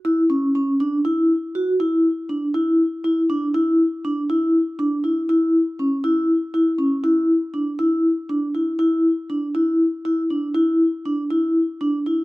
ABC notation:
X:1
M:7/8
L:1/8
Q:1/4=120
K:Dlyd
V:1 name="Vibraphone"
E C C D E2 F | E2 D E2 E D | E2 D E2 D E | E2 C E2 E C |
E2 D E2 D E | E2 D E2 E D | E2 D E2 D E |]